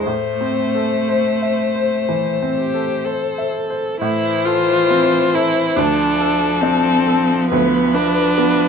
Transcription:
0.06 grand piano A2, cello A3, violin C5
0.41 grand piano C4
0.75 grand piano A4
1.08 grand piano C5, viola C5
1.42 grand piano E5
1.76 grand piano C5
2.09 grand piano E3
2.42 grand piano C4
2.58 viola G4
2.74 grand piano A4
3.05 viola A4, grand piano C5
3.38 grand piano E5
3.70 grand piano C5
4.00 grand piano A2, cello E3, viola E4, violin C5
4.45 viola F4, grand piano A4
4.90 grand piano C4
5.34 viola E4, grand piano A4
5.76 grand piano D2, cello F3, viola D4, violin A4
6.20 grand piano A4
6.62 viola C4, grand piano D4
7.07 grand piano A4
7.51 grand piano D2, viola B3, violin B4
7.94 viola D4, grand piano B4
8.38 grand piano B3

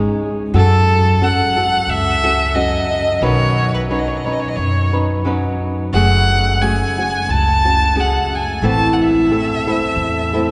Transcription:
Already playing: nylon-string guitar G#3 C#4 D#4 G#4
0.54 upright bass F#2, nylon-string guitar F#3 C#4 F#4 A4, violin A4
1.21 nylon-string guitar F#3 C#4 F#4 A4, violin F#5
1.57 nylon-string guitar C#4 F#4 A4
1.87 upright bass C#2, violin E5
2.24 nylon-string guitar C#4 F#4 A4
2.54 nylon-string guitar F#3 C#4 F#4 A4, violin D#5
3.21 upright bass B1, nylon-string guitar B2 D#3 F#3 C#4 D#4 B4, violin C#5
3.74 violin B4
3.90 nylon-string guitar F#3 C#4 D#4 B4, violin C#5
3.99 violin D#5
4.08 violin C#5
4.16 violin D#5
4.24 nylon-string guitar F#3 C#4 D#4 B4, violin C#5
4.33 violin D#5
4.40 violin C#5
4.48 violin D#5
4.56 upright bass F#2, violin C#5
4.93 nylon-string guitar F#3 C#4 D#4 B4
5.25 nylon-string guitar F#3 C#4 D#4 B4
5.93 upright bass F#1, nylon-string guitar F#3 A3 C#4 F#4 G#4, violin F#5
6.61 nylon-string guitar A3 C#4 F#4 G#4, violin G#5
6.98 nylon-string guitar C#4 F#4
7.29 upright bass C#2, violin A5
7.65 nylon-string guitar C#4 F#4
7.95 nylon-string guitar A3 C#4 F#4 G#4
8.00 violin F#5
8.35 violin G#5
8.62 upright bass A1, nylon-string guitar A2 E3 A3 C4 E4 A4, violin A5
8.93 violin F#5
9.01 violin E5
9.30 nylon-string guitar A3 C4 E4 A4
9.67 nylon-string guitar A3 C4 E4 A4
9.96 upright bass E2
10.33 nylon-string guitar A3 C4 E4 A4

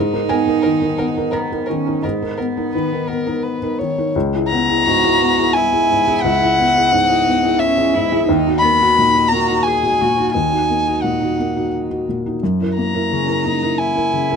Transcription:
Already playing: felt piano G#2, cello D#4
0.13 felt piano D#4 A#4
0.29 felt piano B3 G#5, violin A#4
0.47 felt piano D#4 A#4
0.62 felt piano D#3, violin A#4
0.82 felt piano D#4 A#4
0.98 felt piano B3, violin A#4
1.17 felt piano D#4 A#4
1.31 cello B3, violin A#4, felt piano A#5
1.52 felt piano D#4 A#4
1.66 cello C#4, violin A#4
1.70 felt piano D#3
1.86 felt piano D#4 A#4
2.02 felt piano G#2 D#5, cello B3, violin A#4
2.22 felt piano D#4 A#4
2.38 felt piano B3, violin A#4
2.57 felt piano D#4 A#4
2.73 felt piano D#3, violin B4
2.93 felt piano D#4 A#4
3.08 felt piano B3, violin A#4
3.26 felt piano D#4 A#4
3.43 violin B4
3.63 felt piano D#4 A#4
3.79 felt piano D#3, violin C#5
3.98 felt piano D#4 A#4
4.16 felt piano C#2
4.35 felt piano E4 G#4
4.48 violin A#5
4.52 felt piano B3
4.69 felt piano E4 G#4
4.86 felt piano G#2, cello F#4
5.04 felt piano E4 G#4
5.22 felt piano B3
5.39 felt piano E4 G#4
5.53 cello E4, violin G#5
5.73 felt piano E4 G#4
5.91 felt piano G#2
6.08 felt piano E4 G#4
6.22 felt piano C#2, violin F#5
6.42 felt piano E4 G#4
6.59 felt piano B3
6.76 felt piano E4 G#4
6.92 felt piano G#2, cello D#4
7.10 felt piano E4 G#4
7.27 felt piano B3
7.44 felt piano E4 G#4
7.59 cello C#4, violin E5
7.78 felt piano E4 G#4
7.94 felt piano G#2, cello E4
8.12 felt piano E4 G#4
8.27 felt piano D#2, cello D#4
8.47 felt piano D#4 F#4
8.59 cello B3, violin B5
8.64 felt piano A#3
8.82 felt piano D#4 F#4
8.97 felt piano A#2, cello D#4
9.15 felt piano D#4 F#4
9.28 felt piano A#3, cello F#4, violin A#5
9.48 felt piano D#4 F#4
9.63 cello G#4, violin G#5
9.83 felt piano D#4 F#4
10.01 felt piano A#2, cello F#4
10.18 felt piano D#4 F#4
10.32 felt piano D#2, cello D#4, violin G#5
10.52 felt piano D#4 F#4
10.70 felt piano A#3
10.87 felt piano D#4 F#4
11.02 felt piano A#2, violin F#5
11.22 felt piano D#4 F#4
11.39 felt piano A#3
11.56 felt piano D#4 F#4
11.90 felt piano D#4 F#4
12.09 felt piano A#2
12.26 felt piano D#4 F#4
12.43 felt piano F#2
12.61 felt piano E4 A#4
12.76 felt piano A#3, violin A#5
12.94 felt piano E4 A#4
13.11 felt piano C#3, cello C#4
13.28 felt piano E4 A#4
13.44 felt piano A#3, cello D#4
13.62 felt piano E4 A#4
13.78 cello E4, violin G#5
13.96 felt piano E4 A#4
14.13 felt piano C#3
14.30 felt piano E4 A#4

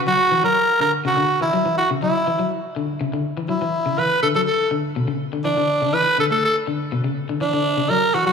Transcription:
0.07 clean electric guitar F#3, tenor saxophone F#4
0.32 clean electric guitar E3
0.44 clean electric guitar F#3, tenor saxophone A#4
0.80 clean electric guitar D3, tenor saxophone A#4
1.05 clean electric guitar C#3, tenor saxophone F#4
1.17 clean electric guitar D3
1.41 clean electric guitar E3, tenor saxophone E4
1.53 clean electric guitar F#3
1.66 clean electric guitar E3
1.78 tenor saxophone F#4
1.91 clean electric guitar C#3
2.02 clean electric guitar F#3, tenor saxophone E4
2.27 clean electric guitar E3
2.39 clean electric guitar F#3
2.76 clean electric guitar D3
3.01 clean electric guitar C#3
3.13 clean electric guitar D3
3.37 clean electric guitar E3
3.49 clean electric guitar F#3, tenor saxophone E4
3.62 clean electric guitar E3
3.86 clean electric guitar C#3
3.98 clean electric guitar E3, tenor saxophone B4
4.22 clean electric guitar D3, tenor saxophone A4
4.35 clean electric guitar F#3, tenor saxophone A4
4.47 tenor saxophone A4
4.71 clean electric guitar D3
4.96 clean electric guitar B2
5.08 clean electric guitar C#3
5.33 clean electric guitar D3
5.45 clean electric guitar E3, tenor saxophone D4
5.57 clean electric guitar D3
5.82 clean electric guitar C#3
5.94 clean electric guitar E3, tenor saxophone B4
6.18 clean electric guitar D3, tenor saxophone A4
6.31 clean electric guitar A3, tenor saxophone A4
6.45 tenor saxophone A4
6.67 clean electric guitar D3
6.92 clean electric guitar B2
7.04 clean electric guitar C#3
7.29 clean electric guitar D3
7.41 clean electric guitar E3, tenor saxophone D4
7.53 clean electric guitar D3
7.77 clean electric guitar C#3
7.90 clean electric guitar F#3, tenor saxophone A#4
8.14 clean electric guitar E3, tenor saxophone F#4
8.26 clean electric guitar F#3, tenor saxophone F#4

